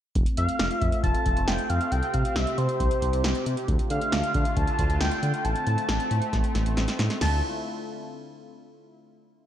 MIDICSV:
0, 0, Header, 1, 5, 480
1, 0, Start_track
1, 0, Key_signature, -1, "minor"
1, 0, Tempo, 441176
1, 166, Time_signature, 4, 2, 24, 8
1, 10297, End_track
2, 0, Start_track
2, 0, Title_t, "Analog synth lead"
2, 0, Program_c, 0, 81
2, 407, Note_on_c, 0, 77, 107
2, 886, Note_off_c, 0, 77, 0
2, 886, Note_on_c, 0, 76, 107
2, 1083, Note_off_c, 0, 76, 0
2, 1126, Note_on_c, 0, 81, 113
2, 1606, Note_on_c, 0, 79, 102
2, 1622, Note_off_c, 0, 81, 0
2, 1846, Note_on_c, 0, 77, 97
2, 1862, Note_off_c, 0, 79, 0
2, 2086, Note_on_c, 0, 79, 98
2, 2102, Note_off_c, 0, 77, 0
2, 2326, Note_on_c, 0, 77, 93
2, 2342, Note_off_c, 0, 79, 0
2, 2566, Note_on_c, 0, 76, 92
2, 2582, Note_off_c, 0, 77, 0
2, 2805, Note_on_c, 0, 72, 90
2, 2821, Note_off_c, 0, 76, 0
2, 3766, Note_off_c, 0, 72, 0
2, 4248, Note_on_c, 0, 77, 96
2, 4966, Note_on_c, 0, 81, 112
2, 4983, Note_off_c, 0, 77, 0
2, 5439, Note_off_c, 0, 81, 0
2, 5446, Note_on_c, 0, 79, 100
2, 5926, Note_on_c, 0, 81, 110
2, 5942, Note_off_c, 0, 79, 0
2, 7366, Note_off_c, 0, 81, 0
2, 7848, Note_on_c, 0, 81, 88
2, 8071, Note_off_c, 0, 81, 0
2, 10297, End_track
3, 0, Start_track
3, 0, Title_t, "Analog synth pad"
3, 0, Program_c, 1, 89
3, 167, Note_on_c, 1, 57, 79
3, 167, Note_on_c, 1, 60, 74
3, 167, Note_on_c, 1, 65, 85
3, 2068, Note_off_c, 1, 57, 0
3, 2068, Note_off_c, 1, 65, 0
3, 2086, Note_on_c, 1, 48, 81
3, 2087, Note_on_c, 1, 67, 85
3, 3969, Note_off_c, 1, 60, 0
3, 3987, Note_off_c, 1, 48, 0
3, 3988, Note_off_c, 1, 67, 0
3, 4008, Note_on_c, 1, 50, 80
3, 4008, Note_on_c, 1, 57, 73
3, 4008, Note_on_c, 1, 65, 87
3, 5908, Note_off_c, 1, 50, 0
3, 5908, Note_off_c, 1, 57, 0
3, 5908, Note_off_c, 1, 65, 0
3, 5927, Note_on_c, 1, 57, 82
3, 5927, Note_on_c, 1, 60, 74
3, 7828, Note_off_c, 1, 57, 0
3, 7828, Note_off_c, 1, 60, 0
3, 7847, Note_on_c, 1, 50, 73
3, 7847, Note_on_c, 1, 57, 66
3, 7847, Note_on_c, 1, 64, 67
3, 7848, Note_on_c, 1, 65, 78
3, 8070, Note_off_c, 1, 50, 0
3, 8070, Note_off_c, 1, 57, 0
3, 8070, Note_off_c, 1, 64, 0
3, 8070, Note_off_c, 1, 65, 0
3, 10297, End_track
4, 0, Start_track
4, 0, Title_t, "Analog synth bass"
4, 0, Program_c, 2, 38
4, 168, Note_on_c, 2, 29, 100
4, 272, Note_off_c, 2, 29, 0
4, 407, Note_on_c, 2, 41, 94
4, 512, Note_off_c, 2, 41, 0
4, 648, Note_on_c, 2, 29, 100
4, 752, Note_off_c, 2, 29, 0
4, 888, Note_on_c, 2, 41, 92
4, 993, Note_off_c, 2, 41, 0
4, 1127, Note_on_c, 2, 29, 113
4, 1232, Note_off_c, 2, 29, 0
4, 1368, Note_on_c, 2, 29, 95
4, 1472, Note_off_c, 2, 29, 0
4, 1486, Note_on_c, 2, 29, 96
4, 1592, Note_off_c, 2, 29, 0
4, 1607, Note_on_c, 2, 29, 99
4, 1712, Note_off_c, 2, 29, 0
4, 1848, Note_on_c, 2, 41, 99
4, 1952, Note_off_c, 2, 41, 0
4, 2088, Note_on_c, 2, 36, 106
4, 2192, Note_off_c, 2, 36, 0
4, 2328, Note_on_c, 2, 48, 103
4, 2432, Note_off_c, 2, 48, 0
4, 2568, Note_on_c, 2, 36, 93
4, 2672, Note_off_c, 2, 36, 0
4, 2807, Note_on_c, 2, 48, 95
4, 2912, Note_off_c, 2, 48, 0
4, 3047, Note_on_c, 2, 36, 104
4, 3152, Note_off_c, 2, 36, 0
4, 3287, Note_on_c, 2, 36, 103
4, 3392, Note_off_c, 2, 36, 0
4, 3408, Note_on_c, 2, 36, 100
4, 3512, Note_off_c, 2, 36, 0
4, 3527, Note_on_c, 2, 36, 98
4, 3632, Note_off_c, 2, 36, 0
4, 3768, Note_on_c, 2, 48, 96
4, 3872, Note_off_c, 2, 48, 0
4, 4008, Note_on_c, 2, 38, 108
4, 4112, Note_off_c, 2, 38, 0
4, 4247, Note_on_c, 2, 50, 99
4, 4352, Note_off_c, 2, 50, 0
4, 4487, Note_on_c, 2, 38, 102
4, 4592, Note_off_c, 2, 38, 0
4, 4729, Note_on_c, 2, 50, 89
4, 4833, Note_off_c, 2, 50, 0
4, 4967, Note_on_c, 2, 38, 99
4, 5072, Note_off_c, 2, 38, 0
4, 5208, Note_on_c, 2, 38, 111
4, 5313, Note_off_c, 2, 38, 0
4, 5326, Note_on_c, 2, 38, 98
4, 5432, Note_off_c, 2, 38, 0
4, 5447, Note_on_c, 2, 38, 98
4, 5552, Note_off_c, 2, 38, 0
4, 5687, Note_on_c, 2, 50, 105
4, 5792, Note_off_c, 2, 50, 0
4, 5927, Note_on_c, 2, 33, 98
4, 6032, Note_off_c, 2, 33, 0
4, 6167, Note_on_c, 2, 45, 94
4, 6272, Note_off_c, 2, 45, 0
4, 6407, Note_on_c, 2, 33, 102
4, 6512, Note_off_c, 2, 33, 0
4, 6647, Note_on_c, 2, 45, 99
4, 6752, Note_off_c, 2, 45, 0
4, 6886, Note_on_c, 2, 33, 107
4, 6992, Note_off_c, 2, 33, 0
4, 7127, Note_on_c, 2, 33, 103
4, 7232, Note_off_c, 2, 33, 0
4, 7247, Note_on_c, 2, 33, 90
4, 7352, Note_off_c, 2, 33, 0
4, 7366, Note_on_c, 2, 33, 104
4, 7472, Note_off_c, 2, 33, 0
4, 7607, Note_on_c, 2, 45, 102
4, 7712, Note_off_c, 2, 45, 0
4, 7848, Note_on_c, 2, 38, 100
4, 8070, Note_off_c, 2, 38, 0
4, 10297, End_track
5, 0, Start_track
5, 0, Title_t, "Drums"
5, 167, Note_on_c, 9, 36, 105
5, 167, Note_on_c, 9, 42, 64
5, 276, Note_off_c, 9, 36, 0
5, 276, Note_off_c, 9, 42, 0
5, 284, Note_on_c, 9, 42, 47
5, 393, Note_off_c, 9, 42, 0
5, 405, Note_on_c, 9, 42, 69
5, 514, Note_off_c, 9, 42, 0
5, 528, Note_on_c, 9, 42, 57
5, 637, Note_off_c, 9, 42, 0
5, 646, Note_on_c, 9, 38, 97
5, 647, Note_on_c, 9, 42, 72
5, 754, Note_off_c, 9, 38, 0
5, 756, Note_off_c, 9, 42, 0
5, 768, Note_on_c, 9, 42, 51
5, 877, Note_off_c, 9, 42, 0
5, 887, Note_on_c, 9, 42, 71
5, 888, Note_on_c, 9, 36, 93
5, 996, Note_off_c, 9, 42, 0
5, 997, Note_off_c, 9, 36, 0
5, 1004, Note_on_c, 9, 42, 50
5, 1113, Note_off_c, 9, 42, 0
5, 1127, Note_on_c, 9, 36, 91
5, 1128, Note_on_c, 9, 42, 74
5, 1236, Note_off_c, 9, 36, 0
5, 1237, Note_off_c, 9, 42, 0
5, 1246, Note_on_c, 9, 42, 50
5, 1355, Note_off_c, 9, 42, 0
5, 1368, Note_on_c, 9, 36, 88
5, 1368, Note_on_c, 9, 42, 75
5, 1476, Note_off_c, 9, 42, 0
5, 1477, Note_off_c, 9, 36, 0
5, 1488, Note_on_c, 9, 42, 54
5, 1597, Note_off_c, 9, 42, 0
5, 1606, Note_on_c, 9, 38, 111
5, 1607, Note_on_c, 9, 42, 69
5, 1715, Note_off_c, 9, 38, 0
5, 1716, Note_off_c, 9, 42, 0
5, 1724, Note_on_c, 9, 42, 52
5, 1833, Note_off_c, 9, 42, 0
5, 1847, Note_on_c, 9, 42, 67
5, 1956, Note_off_c, 9, 42, 0
5, 1967, Note_on_c, 9, 42, 49
5, 2075, Note_off_c, 9, 42, 0
5, 2087, Note_on_c, 9, 42, 64
5, 2196, Note_off_c, 9, 42, 0
5, 2205, Note_on_c, 9, 42, 49
5, 2313, Note_off_c, 9, 42, 0
5, 2325, Note_on_c, 9, 42, 68
5, 2328, Note_on_c, 9, 36, 84
5, 2434, Note_off_c, 9, 42, 0
5, 2436, Note_off_c, 9, 36, 0
5, 2448, Note_on_c, 9, 42, 59
5, 2557, Note_off_c, 9, 42, 0
5, 2565, Note_on_c, 9, 38, 97
5, 2567, Note_on_c, 9, 42, 75
5, 2674, Note_off_c, 9, 38, 0
5, 2676, Note_off_c, 9, 42, 0
5, 2688, Note_on_c, 9, 42, 54
5, 2797, Note_off_c, 9, 42, 0
5, 2806, Note_on_c, 9, 42, 68
5, 2915, Note_off_c, 9, 42, 0
5, 2924, Note_on_c, 9, 42, 50
5, 3033, Note_off_c, 9, 42, 0
5, 3047, Note_on_c, 9, 36, 88
5, 3049, Note_on_c, 9, 42, 76
5, 3156, Note_off_c, 9, 36, 0
5, 3158, Note_off_c, 9, 42, 0
5, 3166, Note_on_c, 9, 42, 49
5, 3275, Note_off_c, 9, 42, 0
5, 3288, Note_on_c, 9, 42, 78
5, 3397, Note_off_c, 9, 42, 0
5, 3408, Note_on_c, 9, 42, 54
5, 3517, Note_off_c, 9, 42, 0
5, 3527, Note_on_c, 9, 38, 113
5, 3528, Note_on_c, 9, 42, 68
5, 3636, Note_off_c, 9, 38, 0
5, 3637, Note_off_c, 9, 42, 0
5, 3645, Note_on_c, 9, 42, 54
5, 3754, Note_off_c, 9, 42, 0
5, 3768, Note_on_c, 9, 42, 66
5, 3877, Note_off_c, 9, 42, 0
5, 3887, Note_on_c, 9, 42, 49
5, 3995, Note_off_c, 9, 42, 0
5, 4007, Note_on_c, 9, 42, 65
5, 4008, Note_on_c, 9, 36, 104
5, 4116, Note_off_c, 9, 36, 0
5, 4116, Note_off_c, 9, 42, 0
5, 4125, Note_on_c, 9, 42, 49
5, 4234, Note_off_c, 9, 42, 0
5, 4245, Note_on_c, 9, 42, 71
5, 4354, Note_off_c, 9, 42, 0
5, 4368, Note_on_c, 9, 42, 57
5, 4477, Note_off_c, 9, 42, 0
5, 4486, Note_on_c, 9, 38, 98
5, 4487, Note_on_c, 9, 42, 75
5, 4595, Note_off_c, 9, 38, 0
5, 4596, Note_off_c, 9, 42, 0
5, 4608, Note_on_c, 9, 42, 53
5, 4717, Note_off_c, 9, 42, 0
5, 4727, Note_on_c, 9, 42, 69
5, 4729, Note_on_c, 9, 36, 93
5, 4836, Note_off_c, 9, 42, 0
5, 4837, Note_off_c, 9, 36, 0
5, 4844, Note_on_c, 9, 42, 50
5, 4953, Note_off_c, 9, 42, 0
5, 4967, Note_on_c, 9, 36, 86
5, 4968, Note_on_c, 9, 42, 75
5, 5076, Note_off_c, 9, 36, 0
5, 5077, Note_off_c, 9, 42, 0
5, 5086, Note_on_c, 9, 42, 49
5, 5195, Note_off_c, 9, 42, 0
5, 5208, Note_on_c, 9, 36, 90
5, 5208, Note_on_c, 9, 42, 77
5, 5317, Note_off_c, 9, 36, 0
5, 5317, Note_off_c, 9, 42, 0
5, 5328, Note_on_c, 9, 42, 55
5, 5437, Note_off_c, 9, 42, 0
5, 5446, Note_on_c, 9, 38, 112
5, 5447, Note_on_c, 9, 42, 67
5, 5555, Note_off_c, 9, 38, 0
5, 5556, Note_off_c, 9, 42, 0
5, 5565, Note_on_c, 9, 42, 53
5, 5673, Note_off_c, 9, 42, 0
5, 5688, Note_on_c, 9, 42, 68
5, 5797, Note_off_c, 9, 42, 0
5, 5807, Note_on_c, 9, 42, 49
5, 5915, Note_off_c, 9, 42, 0
5, 5927, Note_on_c, 9, 42, 65
5, 6036, Note_off_c, 9, 42, 0
5, 6045, Note_on_c, 9, 42, 50
5, 6153, Note_off_c, 9, 42, 0
5, 6165, Note_on_c, 9, 42, 71
5, 6274, Note_off_c, 9, 42, 0
5, 6288, Note_on_c, 9, 42, 57
5, 6397, Note_off_c, 9, 42, 0
5, 6405, Note_on_c, 9, 38, 96
5, 6406, Note_on_c, 9, 42, 74
5, 6514, Note_off_c, 9, 38, 0
5, 6515, Note_off_c, 9, 42, 0
5, 6528, Note_on_c, 9, 42, 52
5, 6636, Note_off_c, 9, 42, 0
5, 6646, Note_on_c, 9, 42, 71
5, 6755, Note_off_c, 9, 42, 0
5, 6764, Note_on_c, 9, 42, 49
5, 6873, Note_off_c, 9, 42, 0
5, 6887, Note_on_c, 9, 36, 90
5, 6887, Note_on_c, 9, 38, 55
5, 6888, Note_on_c, 9, 42, 73
5, 6995, Note_off_c, 9, 36, 0
5, 6996, Note_off_c, 9, 38, 0
5, 6996, Note_off_c, 9, 42, 0
5, 7005, Note_on_c, 9, 42, 49
5, 7114, Note_off_c, 9, 42, 0
5, 7127, Note_on_c, 9, 38, 68
5, 7127, Note_on_c, 9, 42, 78
5, 7236, Note_off_c, 9, 38, 0
5, 7236, Note_off_c, 9, 42, 0
5, 7247, Note_on_c, 9, 42, 54
5, 7356, Note_off_c, 9, 42, 0
5, 7366, Note_on_c, 9, 42, 67
5, 7367, Note_on_c, 9, 38, 80
5, 7475, Note_off_c, 9, 42, 0
5, 7476, Note_off_c, 9, 38, 0
5, 7483, Note_on_c, 9, 42, 54
5, 7487, Note_on_c, 9, 38, 77
5, 7592, Note_off_c, 9, 42, 0
5, 7595, Note_off_c, 9, 38, 0
5, 7607, Note_on_c, 9, 38, 94
5, 7607, Note_on_c, 9, 42, 67
5, 7715, Note_off_c, 9, 42, 0
5, 7716, Note_off_c, 9, 38, 0
5, 7725, Note_on_c, 9, 42, 49
5, 7726, Note_on_c, 9, 38, 88
5, 7834, Note_off_c, 9, 42, 0
5, 7835, Note_off_c, 9, 38, 0
5, 7847, Note_on_c, 9, 38, 100
5, 7847, Note_on_c, 9, 43, 98
5, 7847, Note_on_c, 9, 49, 87
5, 7956, Note_off_c, 9, 38, 0
5, 7956, Note_off_c, 9, 43, 0
5, 7956, Note_off_c, 9, 49, 0
5, 10297, End_track
0, 0, End_of_file